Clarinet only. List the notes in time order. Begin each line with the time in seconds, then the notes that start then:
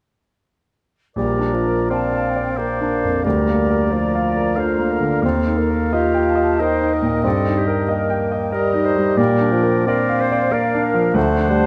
1.16 A#4
1.90 D5
2.57 C5
3.23 A#4
3.91 D5
4.25 D5
4.59 C5
4.92 A#4
5.26 A4
5.93 G4
6.61 C5
6.94 A#4
7.26 A4
7.58 G4
7.91 A#4
8.55 A#4
8.85 C5
9.18 A#4
9.88 A#4
10.21 C5
10.54 D5
10.84 A#4
11.16 C5